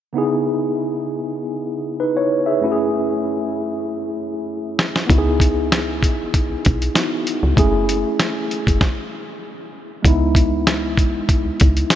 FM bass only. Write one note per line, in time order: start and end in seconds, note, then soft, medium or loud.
5.10 6.04 C#2 loud
6.03 6.26 G#1 medium
6.50 6.56 B1 soft
6.66 6.89 B1 medium
7.43 7.54 C#2 medium
7.57 8.05 F#1 loud
8.67 8.78 F#1 loud
10.05 10.99 C#2 loud
10.98 11.21 B1 loud
11.45 11.51 C#2 medium
11.61 11.84 C#2 medium